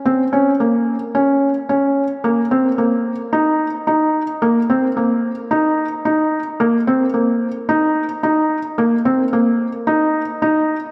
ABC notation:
X:1
M:4/4
L:1/8
Q:1/4=110
K:Ebdor
V:1 name="Felt piano"
C D B,2 D2 D2 | B, C B,2 E2 E2 | B, C B,2 E2 E2 | B, C B,2 E2 E2 |
B, C B,2 E2 E2 |]